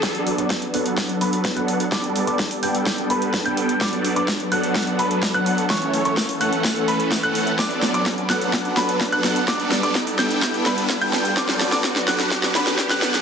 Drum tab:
HH |xxoxxxoxxxoxxxox|xxoxxooxxxoxxxox|xxoxxxoxxxoxxxox|xxoxxooxxxoxxxox|
SD |o---o---o---o---|o---o---o---o---|o---o---o---o---|o---o---o---o---|
BD |o---o---o---o---|o---o---o---o---|o---o---o---o---|o---o---o---o---|

HH |xxoxxxoxxxoxxxox|xxoxxooxxxoxxxox|xxoxxxoxxxoxxxox|
SD |o-o-o-o-o-o-o-o-|o-o-o-o-o-o-o-o-|oooooooooooooooo|
BD |o---o---o---o---|o---o---o---o---|o---o---o---o---|